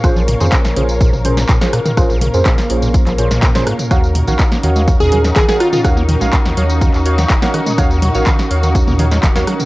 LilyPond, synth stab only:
\new Staff \with { instrumentName = "Synth stab" } { \time 4/4 \key ees \dorian \tempo 4 = 124 <des' f' aes' c''>16 r8 <des' f' aes' c''>16 r8 <des' f' aes' c''>4 <des' f' aes' c''>16 r8 <des' f' aes' c''>16 r8 | <des' f' aes' c''>16 r8 <des' f' aes' c''>16 r8 <des' f' aes' c''>4 <des' f' aes' c''>16 r8 <des' f' aes' c''>16 r8 | <ges' bes' des'' f''>16 r8 <ges' bes' des'' f''>16 r8 <ges' bes' des'' f''>4 <ges' bes' des'' f''>16 r8 <ges' bes' des'' f''>16 r8 | <ges' bes' des'' f''>16 r8 <ges' bes' des'' f''>16 r8 <ges' bes' des'' f''>4 <ges' bes' des'' f''>16 r8 <ges' bes' des'' f''>16 r8 |
<ges' bes' des'' f''>16 r8 <ges' bes' des'' f''>16 r8 <ges' bes' des'' f''>4 <ges' bes' des'' f''>16 r8 <ges' bes' des'' f''>16 r8 | }